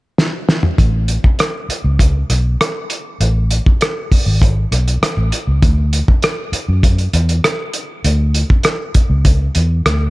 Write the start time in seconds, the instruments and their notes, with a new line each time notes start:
0.18 snare
0.49 snare
0.63 mid tom
0.78 fingered electric bass A1, kick, closed hi-hat
1.08 closed hi-hat
1.24 muted fingered electric bass stroke, kick
1.39 cross-stick, closed hi-hat
1.69 muted fingered electric bass stroke, closed hi-hat
1.84 fingered electric bass C#2
1.99 kick, closed hi-hat
2.30 fingered electric bass B1, cross-stick, closed hi-hat
2.61 cross-stick, closed hi-hat
2.90 closed hi-hat
3.20 fingered electric bass A1, closed hi-hat
3.51 closed hi-hat
3.66 muted fingered electric bass stroke, kick
3.81 cross-stick, closed hi-hat
4.11 muted fingered electric bass stroke, kick, open hi-hat
4.26 fingered electric bass G#1
4.42 kick, closed hi-hat
4.72 fingered electric bass B1, cross-stick, closed hi-hat
4.88 closed hi-hat
5.02 muted fingered electric bass stroke, cross-stick, closed hi-hat
5.17 fingered electric bass A1
5.32 closed hi-hat
5.47 fingered electric bass C#2
5.62 fingered electric bass D2, kick, closed hi-hat
5.93 closed hi-hat
6.08 muted fingered electric bass stroke, kick
6.22 cross-stick, closed hi-hat
6.52 muted fingered electric bass stroke, closed hi-hat
6.68 fingered electric bass F#2
6.83 kick, closed hi-hat
6.98 closed hi-hat
7.13 fingered electric bass E2, closed hi-hat
7.29 closed hi-hat
7.44 cross-stick, closed hi-hat
7.74 closed hi-hat
8.04 fingered electric bass D2, closed hi-hat
8.34 closed hi-hat
8.50 muted fingered electric bass stroke, kick
8.63 cross-stick, closed hi-hat
8.95 muted fingered electric bass stroke, kick, closed hi-hat
9.10 fingered electric bass C#2
9.25 kick, closed hi-hat
9.55 fingered electric bass E2, closed hi-hat
9.86 fingered electric bass D2, cross-stick, closed hi-hat